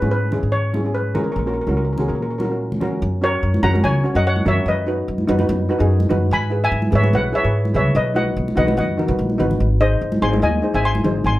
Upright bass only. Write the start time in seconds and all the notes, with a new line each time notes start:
0.02 G#2
0.43 G#2
1.36 A#1
1.67 C#2
2.09 A#2
3.02 F#2
3.43 F#2
3.63 F#2
3.84 C#2
4.15 F#2
4.46 F#2
4.66 F#2
5.08 F#2
5.28 F#2
5.49 F#2
5.80 F#2
6.11 F#2
6.31 G#2
6.72 G#2
6.93 G#2
7.13 B1
7.44 G#2
7.74 C#2
7.95 B1
8.37 B1
8.57 B1
8.77 F#2
9.08 B1
9.19 A#1
9.40 G#1
9.60 G#1
10.01 G#1
10.22 G#1
10.42 D#2
10.74 G#1
11.04 G#1
11.24 G#1